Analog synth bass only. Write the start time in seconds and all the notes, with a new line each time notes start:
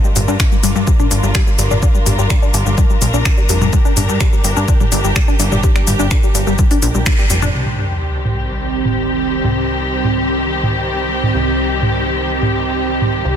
0.16 G1
0.28 G2
0.63 G1
0.76 G2
1.11 G1
1.23 G1
1.58 G1
1.71 G1
2.06 G1
2.18 G1
2.54 G1
2.66 G1
3.02 A#1
3.14 A#1
3.49 F1
3.61 F1
3.97 G1
4.09 G2
4.44 G1
4.57 G2
4.92 G1
5.04 G1
5.40 G1
5.52 G1
5.87 G1
6.00 G1
6.35 G1
6.47 G1
6.83 A#1
6.95 A#1
7.30 F1
7.42 F1
7.54 C2
9.44 C2
11.35 C2
13.25 C2